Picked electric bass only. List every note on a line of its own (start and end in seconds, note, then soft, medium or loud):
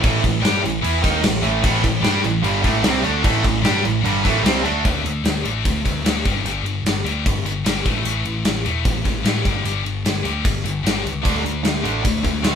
0.04 0.22 A1 loud
0.25 0.43 A1 medium
0.44 0.62 G2 medium
0.64 0.83 A1 medium
0.84 1.02 E2 loud
1.05 1.23 D#2 medium
1.24 1.42 A1 medium
1.43 1.62 A1 medium
1.64 1.82 A1 loud
1.84 2.02 A1 medium
2.04 2.22 G2 medium
2.24 2.42 A1 medium
2.44 2.62 G1 medium
2.65 2.82 A1 medium
2.85 3.03 C2 loud
3.05 3.22 D2 medium
3.25 3.43 A1 loud
3.45 3.63 A1 medium
3.64 3.82 G2 medium
3.84 4.02 A1 medium
4.04 4.22 G1 medium
4.26 4.43 A1 medium
4.44 4.62 C2 loud
4.64 4.82 D2 medium
4.85 5.03 D2 medium
5.04 5.22 D2 medium
5.24 5.42 D2 medium
5.44 5.62 A1 medium
5.65 5.83 D2 medium
5.86 6.03 D2 medium
6.05 6.23 D2 medium
6.26 6.43 G1 medium
6.44 6.63 G1 loud
6.64 6.82 G1 medium
6.84 7.02 G1 medium
7.04 7.23 D2 medium
7.27 7.44 G1 medium
7.45 7.63 G1 medium
7.65 7.83 G1 medium
7.86 8.04 A1 medium
8.05 8.23 A1 loud
8.26 8.43 A1 medium
8.46 8.63 A1 medium
8.66 8.84 E1 medium
8.86 9.04 A1 medium
9.06 9.24 A1 medium
9.25 9.43 A1 medium
9.46 9.64 G1 medium
9.65 9.83 G1 medium
9.85 10.03 G1 medium
10.05 10.23 G1 medium
10.24 10.43 D2 medium
10.45 10.63 G1 medium
10.65 10.83 G1 medium
10.84 11.02 G1 medium
11.04 11.26 C#2 medium
11.26 11.44 D2 loud
11.45 11.63 D2 medium
11.65 11.83 D2 medium
11.84 12.03 A1 medium
12.05 12.23 D2 medium
12.25 12.44 D2 medium
12.44 12.55 D2 medium